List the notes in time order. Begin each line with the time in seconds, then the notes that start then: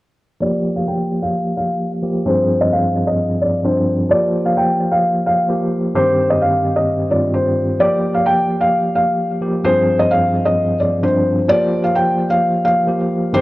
0.40 F3 A#3 G4 D5
0.76 F5
0.87 G5
1.22 F5
1.57 F5
2.02 F3 A#3 G4
2.25 G2 F3 C4 G#4 C5
2.61 D#5
2.72 F5
3.07 D#5
3.41 D5
3.64 G2 F3 C4 D4 C5
4.09 F3 A#3 G4 D5
4.45 F5
4.57 G5
4.92 F5
5.26 F5
5.49 F3 A#3 G4
5.94 G2 D#3 C4 G4 C5
6.30 D#5
6.42 F5
6.76 D#5
7.10 G2 D#3 C4 F4 D5
7.34 C5
7.79 F3 A#3 G4 D5
8.14 F5
8.26 G5
8.61 F5
8.95 F5
9.41 F3 A#3 G4
9.64 G2 F3 C4 G#4 C5
9.99 D#5
10.11 F5
10.45 D#5
10.80 D5
11.03 G2 F3 C4 D4 C5
11.48 F3 A#3 G4 D5
11.84 F5
11.95 G5
12.30 F5
12.65 F5
12.87 F3 A#3 G4
13.32 G2 D#3 C4 G4 C5